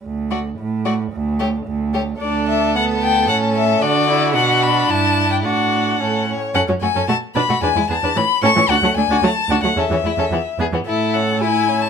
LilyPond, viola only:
\new Staff \with { instrumentName = "Viola" } { \time 2/4 \key d \major \tempo 4 = 111 r8 a8 r8 a8 | r8 a8 r8 a8 | d'4 b4 | cis'4 d'8 e'8 |
d'2 | d'4 cis'8. r16 | \key a \major cis'16 fis16 a16 cis'16 a16 r16 d'16 a16 | d'16 gis16 b16 d'16 e16 r16 cis'16 e16 |
d'16 fis16 a16 d'16 fis16 r16 d'16 fis16 | cis'16 e16 a16 cis'16 e16 r16 b16 e16 | a'4 e'4 | }